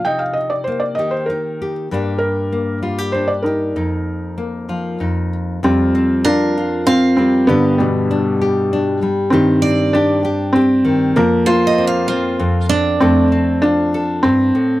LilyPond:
<<
  \new Staff \with { instrumentName = "Steel-string acoustic guitar" } { \time 3/4 \key f \mixolydian \tempo 4 = 97 r2. | r2. | r2. | r4 bes'4 f''4~ |
f''8 r2 r8 | r8 d''2~ d''8~ | d''8 c''16 ees''16 f''8 f'4 d'8~ | d'8 r2 r8 | }
  \new Staff \with { instrumentName = "Felt piano" } { \time 3/4 \key f \mixolydian g''16 f''16 ees''16 d''16 c''16 d''16 ees''16 c''16 bes'8. r16 | r8 bes'4 r8 c''16 d''16 bes'8~ | bes'2 r4 | c'4 d'4 c'8 c'8 |
b8 g2 r8 | c'4 d'4 c'4 | bes8 f'2 r8 | c'4 d'4 c'4 | }
  \new Staff \with { instrumentName = "Felt piano" } { \clef bass \time 3/4 \key f \mixolydian ees''4. r4. | r2 r8 ees'8~ | ees'2~ ees'8 r8 | g4. r4. |
d8 b,2 r8 | ees4. r4. | f8 bes4. r4 | a4. r4. | }
  \new Staff \with { instrumentName = "Nylon-string guitar" } { \time 3/4 \key f \mixolydian << { ees'4 bes8 g'8 ees'8 g'8 | <g bes d' g'>4 bes8 f'16 g'16 d'8 g'8 | ees'4 bes8 f'8 ees'4 | f'8 c'8 f'8 f'8 f'4 |
g'8 b8 d'8 g'8 d'4 | g'8 c'8 g'8 g'8 g'4 | bes'8 bes8 c'8 c'8 c'8 c'8 | a'8 c'8 f'8 a'4. | } \\ { c4. ees4. | g,4. g4. | f,4. f8 f,4 | f,2~ f,8 g8 |
g,2~ g,8 g8 | g,2~ g,8 ees8 | f,2 f,4 | f,2 g,8 a,8 | } >> }
>>